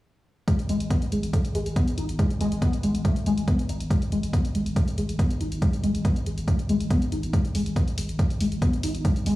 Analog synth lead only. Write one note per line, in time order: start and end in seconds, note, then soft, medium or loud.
0.48 0.54 G#3 medium
0.69 0.76 G#3 loud
0.91 1.00 B3 medium
1.12 1.22 G#3 medium
1.33 1.43 A3 medium
1.55 1.59 G#3 loud
1.76 1.86 B3 medium
1.98 2.04 D#4 medium
2.19 2.26 G#3 medium
2.41 2.47 G#3 loud
2.62 2.72 B3 medium
2.83 2.93 G#3 medium
3.05 3.15 A3 medium
3.26 3.30 G#3 loud
3.48 3.57 B3 medium
3.69 3.76 D#4 medium
3.91 3.97 G#3 medium
4.12 4.19 G#3 loud
4.34 4.43 B3 medium
4.55 4.65 G#3 medium
4.76 4.86 A3 medium
4.98 5.02 G#3 medium
5.19 5.29 B3 medium
5.41 5.47 D#4 medium
5.62 5.68 G#3 medium
5.83 5.90 G#3 loud
6.05 6.15 B3 medium
6.26 6.36 G#3 medium
6.48 6.57 A3 medium
6.69 6.73 G#3 loud
6.91 7.00 B3 medium
7.12 7.19 D#4 medium
7.33 7.40 G#3 medium
7.55 7.61 G#3 loud
7.76 7.86 B3 medium
7.98 8.07 G#3 medium
8.19 8.29 A3 medium
8.41 8.44 G#3 loud
8.62 8.72 B3 medium
8.84 8.90 D#4 medium
9.05 9.11 G#3 medium
9.26 9.33 G#3 loud